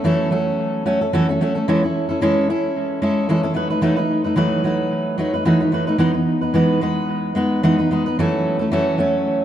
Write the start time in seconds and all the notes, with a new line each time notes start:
0.04 E3 F#3 A3 C#4 A4
0.30 F#3 A3 C#4 A4
0.86 F#3 A3 C#4 A4
1.01 A3 C#4 A4
1.13 E3 F#3 A3 C#4 A4
1.29 A3 C#4 A4
1.41 F#3 A3 C#4 A4
1.55 A3 C#4 A4
1.68 E3 G#3 C#4 E4 A4
1.83 C#4 E4 A4
2.09 C#4 E4 A4
2.21 E3 G#3 C#4 E4 A4
2.50 C#4 E4 A4
3.02 G#3 C#4 E4 A4
3.29 E3 G#3 C#4 E4 A4
3.43 C#4 E4 A4
3.54 F#3 A3 D#4 B4
3.70 A3 D#4 B4
3.81 E3 F#3 A3 D#4 B4
3.96 A3 D#4 B4
4.24 A3 D#4 B4
4.36 E3 F#3 A3 D#4 B4
4.64 F#3 A3 D#4 B4
5.18 F#3 A3 D#4 B4
5.34 A3 D#4 B4
5.45 E3 F#3 A3 D#4 B4
5.60 A3 D#4 B4
5.72 F#3 A3 D#4 B4
5.87 A3 D#4 B4
5.98 E3 G#3 B3 D#4 B4
6.14 B3 D#4
6.41 B3 D#4 B4
6.54 E3 G#3 B3 D#4 B4
6.81 G#3 B3 D#4 B4
7.35 G#3 B3 D#4 B4
7.63 E3 G#3 B3 D#4 B4
7.78 B3 D#4 B4
7.91 G#3 B3 D#4 B4
8.06 B3 D#4 B4
8.19 E3 F#3 A3 C#4 A4
8.59 A3 C#4 A4
8.71 E3 F#3 A3 C#4 A4
8.98 F#3 A3 C#4 A4